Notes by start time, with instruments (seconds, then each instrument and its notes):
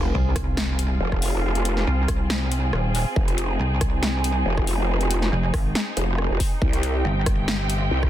Already playing: wobble bass F1, string section C4 F4 G#4, sub drop
0.14 wobble bass C2
0.36 kick, cross-stick, closed hi-hat
0.57 snare
0.79 closed hi-hat
1.00 wobble bass F1
1.12 kick, cross-stick
1.22 open hi-hat
1.55 closed hi-hat
1.65 closed hi-hat
1.77 snare
1.87 wobble bass C2
2.08 kick, cross-stick, closed hi-hat
2.30 snare
2.52 closed hi-hat
2.73 wobble bass D#1, cross-stick
2.95 open hi-hat
3.16 wobble bass F1, string section D#4, kick
3.28 closed hi-hat
3.38 closed hi-hat
3.59 wobble bass C2
3.81 kick, cross-stick, closed hi-hat
4.03 snare
4.24 closed hi-hat
4.46 wobble bass F1
4.58 kick, cross-stick
4.67 open hi-hat
5.01 closed hi-hat
5.11 closed hi-hat
5.22 snare
5.32 wobble bass F1
5.54 wobble bass G#1, kick, cross-stick, open hi-hat
5.75 snare
5.97 wobble bass F1, closed hi-hat
6.18 cross-stick
6.30 wobble bass F1
6.40 kick, open hi-hat
6.62 wobble bass C2, string section C3 C4 G4 G5, kick
6.73 closed hi-hat
6.83 closed hi-hat
7.05 wobble bass G1
7.26 kick, cross-stick, closed hi-hat
7.48 snare
7.70 closed hi-hat
7.91 wobble bass C2
8.03 kick, cross-stick